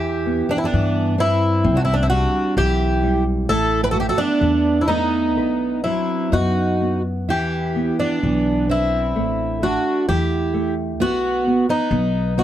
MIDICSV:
0, 0, Header, 1, 5, 480
1, 0, Start_track
1, 0, Key_signature, 1, "minor"
1, 0, Tempo, 924499
1, 856, Time_signature, 2, 2, 24, 8
1, 2297, Tempo, 947867
1, 4697, Tempo, 916031
1, 6411, End_track
2, 0, Start_track
2, 0, Title_t, "Twelve-string acoustic guitar"
2, 0, Program_c, 0, 25
2, 0, Note_on_c, 0, 67, 81
2, 263, Note_on_c, 0, 62, 79
2, 272, Note_off_c, 0, 67, 0
2, 294, Note_off_c, 0, 62, 0
2, 302, Note_on_c, 0, 64, 65
2, 333, Note_off_c, 0, 64, 0
2, 338, Note_on_c, 0, 62, 76
2, 602, Note_off_c, 0, 62, 0
2, 624, Note_on_c, 0, 64, 90
2, 918, Note_on_c, 0, 66, 75
2, 924, Note_off_c, 0, 64, 0
2, 956, Note_off_c, 0, 66, 0
2, 959, Note_on_c, 0, 64, 73
2, 1004, Note_off_c, 0, 64, 0
2, 1005, Note_on_c, 0, 62, 76
2, 1050, Note_off_c, 0, 62, 0
2, 1053, Note_on_c, 0, 64, 70
2, 1086, Note_off_c, 0, 64, 0
2, 1088, Note_on_c, 0, 66, 87
2, 1315, Note_off_c, 0, 66, 0
2, 1337, Note_on_c, 0, 67, 94
2, 1676, Note_off_c, 0, 67, 0
2, 1813, Note_on_c, 0, 69, 110
2, 1978, Note_off_c, 0, 69, 0
2, 1993, Note_on_c, 0, 71, 92
2, 2029, Note_off_c, 0, 71, 0
2, 2031, Note_on_c, 0, 69, 83
2, 2074, Note_off_c, 0, 69, 0
2, 2076, Note_on_c, 0, 67, 82
2, 2122, Note_off_c, 0, 67, 0
2, 2124, Note_on_c, 0, 69, 82
2, 2170, Note_on_c, 0, 62, 89
2, 2172, Note_off_c, 0, 69, 0
2, 2494, Note_on_c, 0, 64, 64
2, 2505, Note_off_c, 0, 62, 0
2, 2526, Note_on_c, 0, 63, 88
2, 2531, Note_off_c, 0, 64, 0
2, 3011, Note_off_c, 0, 63, 0
2, 3013, Note_on_c, 0, 64, 70
2, 3263, Note_on_c, 0, 66, 75
2, 3267, Note_off_c, 0, 64, 0
2, 3608, Note_off_c, 0, 66, 0
2, 3754, Note_on_c, 0, 67, 88
2, 4090, Note_off_c, 0, 67, 0
2, 4106, Note_on_c, 0, 62, 78
2, 4466, Note_off_c, 0, 62, 0
2, 4468, Note_on_c, 0, 64, 83
2, 4942, Note_on_c, 0, 66, 72
2, 4956, Note_off_c, 0, 64, 0
2, 5163, Note_off_c, 0, 66, 0
2, 5180, Note_on_c, 0, 67, 83
2, 5519, Note_off_c, 0, 67, 0
2, 5667, Note_on_c, 0, 66, 90
2, 6002, Note_off_c, 0, 66, 0
2, 6027, Note_on_c, 0, 63, 83
2, 6386, Note_on_c, 0, 66, 78
2, 6391, Note_off_c, 0, 63, 0
2, 6411, Note_off_c, 0, 66, 0
2, 6411, End_track
3, 0, Start_track
3, 0, Title_t, "Twelve-string acoustic guitar"
3, 0, Program_c, 1, 25
3, 0, Note_on_c, 1, 64, 73
3, 236, Note_off_c, 1, 64, 0
3, 255, Note_on_c, 1, 59, 65
3, 290, Note_off_c, 1, 59, 0
3, 292, Note_on_c, 1, 60, 55
3, 326, Note_off_c, 1, 60, 0
3, 331, Note_on_c, 1, 59, 66
3, 598, Note_off_c, 1, 59, 0
3, 615, Note_on_c, 1, 60, 68
3, 890, Note_off_c, 1, 60, 0
3, 910, Note_on_c, 1, 62, 64
3, 954, Note_off_c, 1, 62, 0
3, 962, Note_on_c, 1, 60, 62
3, 1003, Note_off_c, 1, 60, 0
3, 1006, Note_on_c, 1, 59, 65
3, 1047, Note_off_c, 1, 59, 0
3, 1051, Note_on_c, 1, 60, 66
3, 1093, Note_off_c, 1, 60, 0
3, 1098, Note_on_c, 1, 62, 78
3, 1320, Note_off_c, 1, 62, 0
3, 1338, Note_on_c, 1, 64, 82
3, 1676, Note_off_c, 1, 64, 0
3, 1816, Note_on_c, 1, 64, 95
3, 1979, Note_off_c, 1, 64, 0
3, 1990, Note_on_c, 1, 67, 75
3, 2033, Note_off_c, 1, 67, 0
3, 2038, Note_on_c, 1, 66, 82
3, 2080, Note_off_c, 1, 66, 0
3, 2082, Note_on_c, 1, 64, 75
3, 2125, Note_off_c, 1, 64, 0
3, 2127, Note_on_c, 1, 66, 75
3, 2171, Note_off_c, 1, 66, 0
3, 2176, Note_on_c, 1, 59, 73
3, 2478, Note_off_c, 1, 59, 0
3, 2499, Note_on_c, 1, 60, 58
3, 2531, Note_off_c, 1, 60, 0
3, 2533, Note_on_c, 1, 59, 74
3, 2995, Note_off_c, 1, 59, 0
3, 3014, Note_on_c, 1, 60, 65
3, 3243, Note_off_c, 1, 60, 0
3, 3257, Note_on_c, 1, 63, 69
3, 3605, Note_off_c, 1, 63, 0
3, 3746, Note_on_c, 1, 64, 71
3, 4086, Note_off_c, 1, 64, 0
3, 4104, Note_on_c, 1, 59, 65
3, 4441, Note_off_c, 1, 59, 0
3, 4459, Note_on_c, 1, 60, 70
3, 4916, Note_off_c, 1, 60, 0
3, 4942, Note_on_c, 1, 62, 66
3, 5164, Note_off_c, 1, 62, 0
3, 5180, Note_on_c, 1, 64, 71
3, 5519, Note_off_c, 1, 64, 0
3, 5660, Note_on_c, 1, 59, 77
3, 5999, Note_off_c, 1, 59, 0
3, 6022, Note_on_c, 1, 59, 73
3, 6357, Note_off_c, 1, 59, 0
3, 6382, Note_on_c, 1, 63, 66
3, 6411, Note_off_c, 1, 63, 0
3, 6411, End_track
4, 0, Start_track
4, 0, Title_t, "Nylon-string guitar"
4, 0, Program_c, 2, 24
4, 0, Note_on_c, 2, 52, 52
4, 136, Note_on_c, 2, 59, 48
4, 370, Note_off_c, 2, 59, 0
4, 371, Note_off_c, 2, 52, 0
4, 377, Note_on_c, 2, 52, 52
4, 609, Note_off_c, 2, 52, 0
4, 617, Note_on_c, 2, 71, 52
4, 848, Note_off_c, 2, 71, 0
4, 854, Note_on_c, 2, 60, 60
4, 1093, Note_on_c, 2, 55, 55
4, 1328, Note_off_c, 2, 55, 0
4, 1336, Note_on_c, 2, 52, 54
4, 1569, Note_off_c, 2, 52, 0
4, 1576, Note_on_c, 2, 55, 56
4, 1793, Note_off_c, 2, 60, 0
4, 1808, Note_off_c, 2, 55, 0
4, 1816, Note_on_c, 2, 57, 69
4, 2048, Note_off_c, 2, 57, 0
4, 2054, Note_on_c, 2, 57, 52
4, 2288, Note_off_c, 2, 57, 0
4, 2295, Note_on_c, 2, 57, 54
4, 2526, Note_off_c, 2, 57, 0
4, 2532, Note_on_c, 2, 57, 51
4, 2766, Note_off_c, 2, 57, 0
4, 2778, Note_on_c, 2, 71, 59
4, 3021, Note_on_c, 2, 54, 48
4, 3256, Note_off_c, 2, 54, 0
4, 3259, Note_on_c, 2, 59, 47
4, 3497, Note_off_c, 2, 59, 0
4, 3507, Note_on_c, 2, 59, 46
4, 3730, Note_off_c, 2, 71, 0
4, 3741, Note_off_c, 2, 59, 0
4, 3748, Note_on_c, 2, 52, 58
4, 3986, Note_on_c, 2, 59, 50
4, 4216, Note_off_c, 2, 52, 0
4, 4218, Note_off_c, 2, 59, 0
4, 4222, Note_on_c, 2, 52, 51
4, 4454, Note_off_c, 2, 52, 0
4, 4463, Note_on_c, 2, 71, 49
4, 4691, Note_off_c, 2, 71, 0
4, 4693, Note_on_c, 2, 57, 59
4, 4929, Note_off_c, 2, 57, 0
4, 4935, Note_on_c, 2, 57, 50
4, 5169, Note_off_c, 2, 57, 0
4, 5181, Note_on_c, 2, 57, 52
4, 5412, Note_off_c, 2, 57, 0
4, 5418, Note_on_c, 2, 57, 52
4, 5652, Note_off_c, 2, 57, 0
4, 5665, Note_on_c, 2, 59, 65
4, 5900, Note_off_c, 2, 59, 0
4, 5906, Note_on_c, 2, 59, 54
4, 6134, Note_off_c, 2, 59, 0
4, 6142, Note_on_c, 2, 59, 66
4, 6373, Note_off_c, 2, 59, 0
4, 6379, Note_on_c, 2, 59, 51
4, 6411, Note_off_c, 2, 59, 0
4, 6411, End_track
5, 0, Start_track
5, 0, Title_t, "Upright bass"
5, 0, Program_c, 3, 32
5, 0, Note_on_c, 3, 40, 86
5, 209, Note_off_c, 3, 40, 0
5, 381, Note_on_c, 3, 43, 79
5, 853, Note_on_c, 3, 36, 91
5, 861, Note_off_c, 3, 43, 0
5, 1166, Note_off_c, 3, 36, 0
5, 1333, Note_on_c, 3, 35, 90
5, 1811, Note_off_c, 3, 35, 0
5, 1811, Note_on_c, 3, 33, 102
5, 2124, Note_off_c, 3, 33, 0
5, 2291, Note_on_c, 3, 40, 85
5, 2772, Note_off_c, 3, 40, 0
5, 2772, Note_on_c, 3, 35, 94
5, 3089, Note_off_c, 3, 35, 0
5, 3259, Note_on_c, 3, 42, 74
5, 3747, Note_off_c, 3, 42, 0
5, 3747, Note_on_c, 3, 40, 90
5, 4058, Note_off_c, 3, 40, 0
5, 4226, Note_on_c, 3, 35, 79
5, 4695, Note_off_c, 3, 35, 0
5, 4695, Note_on_c, 3, 33, 95
5, 5008, Note_off_c, 3, 33, 0
5, 5181, Note_on_c, 3, 40, 81
5, 5661, Note_off_c, 3, 40, 0
5, 5661, Note_on_c, 3, 35, 99
5, 5971, Note_off_c, 3, 35, 0
5, 6135, Note_on_c, 3, 35, 85
5, 6411, Note_off_c, 3, 35, 0
5, 6411, End_track
0, 0, End_of_file